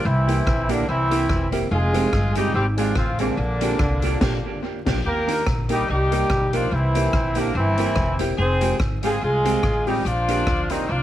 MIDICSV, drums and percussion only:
0, 0, Header, 1, 2, 480
1, 0, Start_track
1, 0, Key_signature, -3, "major"
1, 0, Tempo, 416667
1, 60, Time_signature, 4, 2, 24, 8
1, 12703, End_track
2, 0, Start_track
2, 0, Title_t, "Drums"
2, 330, Note_on_c, 9, 42, 85
2, 445, Note_off_c, 9, 42, 0
2, 538, Note_on_c, 9, 36, 112
2, 542, Note_on_c, 9, 37, 122
2, 653, Note_off_c, 9, 36, 0
2, 657, Note_off_c, 9, 37, 0
2, 798, Note_on_c, 9, 42, 87
2, 913, Note_off_c, 9, 42, 0
2, 1284, Note_on_c, 9, 42, 85
2, 1399, Note_off_c, 9, 42, 0
2, 1491, Note_on_c, 9, 36, 113
2, 1492, Note_on_c, 9, 37, 105
2, 1606, Note_off_c, 9, 36, 0
2, 1607, Note_off_c, 9, 37, 0
2, 1756, Note_on_c, 9, 42, 90
2, 1871, Note_off_c, 9, 42, 0
2, 2239, Note_on_c, 9, 42, 82
2, 2354, Note_off_c, 9, 42, 0
2, 2452, Note_on_c, 9, 36, 114
2, 2452, Note_on_c, 9, 37, 125
2, 2567, Note_off_c, 9, 36, 0
2, 2567, Note_off_c, 9, 37, 0
2, 2711, Note_on_c, 9, 42, 87
2, 2826, Note_off_c, 9, 42, 0
2, 3200, Note_on_c, 9, 42, 91
2, 3315, Note_off_c, 9, 42, 0
2, 3405, Note_on_c, 9, 37, 101
2, 3408, Note_on_c, 9, 36, 101
2, 3520, Note_off_c, 9, 37, 0
2, 3523, Note_off_c, 9, 36, 0
2, 3673, Note_on_c, 9, 42, 80
2, 3789, Note_off_c, 9, 42, 0
2, 4159, Note_on_c, 9, 42, 88
2, 4274, Note_off_c, 9, 42, 0
2, 4369, Note_on_c, 9, 37, 119
2, 4372, Note_on_c, 9, 36, 112
2, 4484, Note_off_c, 9, 37, 0
2, 4487, Note_off_c, 9, 36, 0
2, 4633, Note_on_c, 9, 42, 83
2, 4748, Note_off_c, 9, 42, 0
2, 4851, Note_on_c, 9, 38, 98
2, 4851, Note_on_c, 9, 49, 83
2, 4853, Note_on_c, 9, 36, 104
2, 4966, Note_off_c, 9, 38, 0
2, 4966, Note_off_c, 9, 49, 0
2, 4969, Note_off_c, 9, 36, 0
2, 5605, Note_on_c, 9, 36, 96
2, 5606, Note_on_c, 9, 38, 91
2, 5606, Note_on_c, 9, 49, 80
2, 5720, Note_off_c, 9, 36, 0
2, 5721, Note_off_c, 9, 38, 0
2, 5721, Note_off_c, 9, 49, 0
2, 6090, Note_on_c, 9, 42, 88
2, 6205, Note_off_c, 9, 42, 0
2, 6296, Note_on_c, 9, 37, 119
2, 6299, Note_on_c, 9, 36, 111
2, 6411, Note_off_c, 9, 37, 0
2, 6414, Note_off_c, 9, 36, 0
2, 6556, Note_on_c, 9, 42, 90
2, 6671, Note_off_c, 9, 42, 0
2, 7049, Note_on_c, 9, 42, 93
2, 7164, Note_off_c, 9, 42, 0
2, 7254, Note_on_c, 9, 37, 112
2, 7256, Note_on_c, 9, 36, 106
2, 7369, Note_off_c, 9, 37, 0
2, 7371, Note_off_c, 9, 36, 0
2, 7524, Note_on_c, 9, 42, 86
2, 7639, Note_off_c, 9, 42, 0
2, 8008, Note_on_c, 9, 42, 81
2, 8124, Note_off_c, 9, 42, 0
2, 8216, Note_on_c, 9, 37, 124
2, 8218, Note_on_c, 9, 36, 111
2, 8331, Note_off_c, 9, 37, 0
2, 8333, Note_off_c, 9, 36, 0
2, 8468, Note_on_c, 9, 42, 93
2, 8583, Note_off_c, 9, 42, 0
2, 8959, Note_on_c, 9, 42, 89
2, 9074, Note_off_c, 9, 42, 0
2, 9165, Note_on_c, 9, 37, 107
2, 9169, Note_on_c, 9, 36, 112
2, 9280, Note_off_c, 9, 37, 0
2, 9284, Note_off_c, 9, 36, 0
2, 9436, Note_on_c, 9, 42, 84
2, 9551, Note_off_c, 9, 42, 0
2, 9922, Note_on_c, 9, 42, 93
2, 10037, Note_off_c, 9, 42, 0
2, 10135, Note_on_c, 9, 37, 112
2, 10136, Note_on_c, 9, 36, 120
2, 10250, Note_off_c, 9, 37, 0
2, 10251, Note_off_c, 9, 36, 0
2, 10402, Note_on_c, 9, 42, 92
2, 10517, Note_off_c, 9, 42, 0
2, 10892, Note_on_c, 9, 42, 89
2, 11007, Note_off_c, 9, 42, 0
2, 11095, Note_on_c, 9, 36, 109
2, 11097, Note_on_c, 9, 37, 114
2, 11210, Note_off_c, 9, 36, 0
2, 11212, Note_off_c, 9, 37, 0
2, 11367, Note_on_c, 9, 46, 48
2, 11482, Note_off_c, 9, 46, 0
2, 11577, Note_on_c, 9, 44, 69
2, 11692, Note_off_c, 9, 44, 0
2, 11850, Note_on_c, 9, 42, 91
2, 11965, Note_off_c, 9, 42, 0
2, 12060, Note_on_c, 9, 37, 124
2, 12061, Note_on_c, 9, 36, 117
2, 12175, Note_off_c, 9, 37, 0
2, 12176, Note_off_c, 9, 36, 0
2, 12323, Note_on_c, 9, 42, 86
2, 12438, Note_off_c, 9, 42, 0
2, 12703, End_track
0, 0, End_of_file